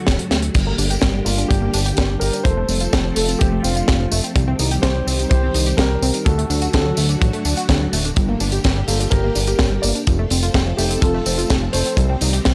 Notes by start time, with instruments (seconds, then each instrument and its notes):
Already playing: string machine D3 F#3 A3 F#4
0.07 analog synth bass D1, synth arpeggio sound A4, kick, snare, closed hi-hat
0.19 synth arpeggio sound F#3, closed hi-hat
0.31 analog synth bass D2, synth arpeggio sound A3, snare, closed hi-hat
0.42 synth arpeggio sound D4, closed hi-hat
0.54 analog synth bass G1, string machine D3 G3 A#3 G4, synth arpeggio sound G3, kick, closed hi-hat, crash, tambourine
0.67 synth arpeggio sound A#3
0.78 analog synth bass G1, synth arpeggio sound D4, open hi-hat, tambourine
0.90 synth arpeggio sound G4, closed hi-hat, tambourine
1.02 analog synth bass G1, synth arpeggio sound A#4, kick, snare, closed hi-hat
1.14 synth arpeggio sound G3
1.25 analog synth bass G1, synth arpeggio sound A#3, grand piano D4 F4, open hi-hat, tambourine
1.38 synth arpeggio sound D4, closed hi-hat, tambourine
1.48 analog synth bass G1, synth arpeggio sound G3, grand piano D4 G4, kick, closed hi-hat, tambourine
1.62 synth arpeggio sound A#3
1.74 analog synth bass G1, synth arpeggio sound D4, open hi-hat, tambourine
1.85 synth arpeggio sound G4, closed hi-hat, tambourine
1.97 analog synth bass G1, synth arpeggio sound A#4, kick, snare, closed hi-hat, tambourine
2.10 synth arpeggio sound G3
2.20 analog synth bass G1, synth arpeggio sound A#3, grand piano G4 A#4, open hi-hat, tambourine
2.33 synth arpeggio sound D4, closed hi-hat, tambourine
2.44 analog synth bass F1, synth arpeggio sound F3, string machine F3 A3 C4 A4, grand piano A4 C5, kick, closed hi-hat, tambourine
2.57 synth arpeggio sound A3
2.69 analog synth bass F1, synth arpeggio sound C4, open hi-hat, tambourine
2.80 synth arpeggio sound F4, closed hi-hat, tambourine
2.93 analog synth bass F1, synth arpeggio sound A4, kick, snare, closed hi-hat, tambourine
3.05 synth arpeggio sound F3
3.15 analog synth bass F1, synth arpeggio sound A3, grand piano F4 A4, open hi-hat, tambourine
3.28 synth arpeggio sound C4, closed hi-hat, tambourine
3.39 analog synth bass F1, synth arpeggio sound F3, grand piano C4 G4, kick, closed hi-hat
3.52 synth arpeggio sound A3
3.63 analog synth bass F1, synth arpeggio sound C4, grand piano D4 F4, open hi-hat, tambourine
3.75 synth arpeggio sound F4, closed hi-hat, tambourine
3.88 analog synth bass F1, synth arpeggio sound A4, kick, snare, closed hi-hat, tambourine
4.00 synth arpeggio sound F3
4.12 analog synth bass F1, synth arpeggio sound A3, open hi-hat, tambourine
4.24 synth arpeggio sound C4, closed hi-hat, tambourine
4.36 analog synth bass C2, string machine D#3 G3 C4 G4, synth arpeggio sound G3, kick, closed hi-hat, tambourine
4.48 synth arpeggio sound C4
4.59 analog synth bass C2, synth arpeggio sound D#4, open hi-hat, tambourine
4.71 synth arpeggio sound G4, closed hi-hat, tambourine
4.82 analog synth bass C2, grand piano G4 C5, synth arpeggio sound C5, kick, snare, closed hi-hat, tambourine
4.95 synth arpeggio sound G3
5.07 analog synth bass C2, synth arpeggio sound C4, open hi-hat, tambourine
5.19 synth arpeggio sound D#4, closed hi-hat, tambourine
5.30 analog synth bass C2, synth arpeggio sound G3, grand piano G4 C5, kick, closed hi-hat
5.43 synth arpeggio sound C4
5.54 analog synth bass C2, synth arpeggio sound D#4, open hi-hat, tambourine
5.66 synth arpeggio sound G4, closed hi-hat, tambourine
5.77 analog synth bass C2, grand piano G4 A#4, synth arpeggio sound C5, kick, snare, closed hi-hat, tambourine
5.91 synth arpeggio sound G3
6.02 analog synth bass C2, synth arpeggio sound C4, open hi-hat, tambourine
6.14 synth arpeggio sound D#4, closed hi-hat, tambourine
6.25 analog synth bass D2, string machine D3 F#3 A3 F#4, synth arpeggio sound F#3, grand piano F#4 A4, kick, closed hi-hat, tambourine
6.38 synth arpeggio sound A3, closed hi-hat
6.50 analog synth bass D2, synth arpeggio sound D4, open hi-hat, tambourine
6.62 synth arpeggio sound F#4, closed hi-hat, tambourine
6.72 analog synth bass D2, grand piano F#4 A4, synth arpeggio sound A4, kick, snare, closed hi-hat, tambourine
6.86 synth arpeggio sound F#3
6.97 analog synth bass D2, synth arpeggio sound A3, open hi-hat, tambourine
7.09 synth arpeggio sound D4, closed hi-hat, tambourine
7.20 analog synth bass A1, synth arpeggio sound F#3, grand piano D4 F#4, kick, closed hi-hat, tambourine
7.33 synth arpeggio sound A3, closed hi-hat
7.45 analog synth bass D2, synth arpeggio sound D4, open hi-hat, tambourine
7.57 synth arpeggio sound F#4, closed hi-hat, tambourine
7.69 analog synth bass D2, synth arpeggio sound A4, kick, snare, closed hi-hat, tambourine
7.81 synth arpeggio sound F#3
7.93 analog synth bass D1, synth arpeggio sound A3, open hi-hat, tambourine
8.05 synth arpeggio sound D4, closed hi-hat, tambourine
8.16 analog synth bass G1, synth arpeggio sound G3, string machine G3 A#3 G4, kick, closed hi-hat, tambourine
8.29 synth arpeggio sound A#3
8.40 analog synth bass G1, synth arpeggio sound D4, open hi-hat, tambourine
8.52 synth arpeggio sound G4, closed hi-hat, tambourine
8.64 analog synth bass G1, synth arpeggio sound A#4, kick, snare, closed hi-hat, tambourine
8.76 synth arpeggio sound G3
8.87 analog synth bass G1, synth arpeggio sound A#3, grand piano F4 A4, open hi-hat, tambourine
9.00 synth arpeggio sound D4, closed hi-hat, tambourine
9.10 analog synth bass G1, synth arpeggio sound G3, grand piano G4 A#4, kick, closed hi-hat, tambourine
9.24 synth arpeggio sound A#3
9.35 analog synth bass G1, synth arpeggio sound D4, open hi-hat, tambourine
9.47 synth arpeggio sound G4, closed hi-hat, tambourine
9.59 analog synth bass G1, synth arpeggio sound A#4, kick, snare, closed hi-hat, tambourine
9.71 synth arpeggio sound G3
9.82 analog synth bass G1, synth arpeggio sound A#3, grand piano A#4 D5, open hi-hat, tambourine
9.95 synth arpeggio sound D4, closed hi-hat, tambourine
10.07 analog synth bass F1, synth arpeggio sound F3, string machine F3 A3 C4 A4, kick, closed hi-hat, tambourine
10.19 synth arpeggio sound A3
10.30 analog synth bass F1, synth arpeggio sound C4, open hi-hat, tambourine
10.43 synth arpeggio sound F4, closed hi-hat, tambourine
10.54 analog synth bass F1, synth arpeggio sound A4, kick, snare, closed hi-hat, tambourine
10.67 synth arpeggio sound F3
10.77 analog synth bass F1, synth arpeggio sound A3, grand piano D#4 G4, open hi-hat, tambourine
10.90 synth arpeggio sound C4, closed hi-hat, tambourine
11.01 analog synth bass F1, synth arpeggio sound F3, grand piano F4 A4, kick, closed hi-hat, tambourine
11.14 synth arpeggio sound A3
11.26 analog synth bass F1, synth arpeggio sound C4, open hi-hat, tambourine
11.38 synth arpeggio sound F4, closed hi-hat, tambourine
11.50 analog synth bass F1, synth arpeggio sound A4, kick, snare, closed hi-hat, tambourine
11.62 synth arpeggio sound F3
11.72 analog synth bass F1, synth arpeggio sound A3, grand piano A4 C5, open hi-hat, tambourine
11.86 synth arpeggio sound C4, closed hi-hat, tambourine
11.97 analog synth bass C2, string machine D#3 G3 G4, synth arpeggio sound G3, kick, closed hi-hat, tambourine
12.09 synth arpeggio sound C4
12.21 analog synth bass C2, synth arpeggio sound D#4, open hi-hat, tambourine
12.33 synth arpeggio sound G4, closed hi-hat, tambourine
12.45 analog synth bass C2, synth arpeggio sound C5, kick, snare, closed hi-hat, tambourine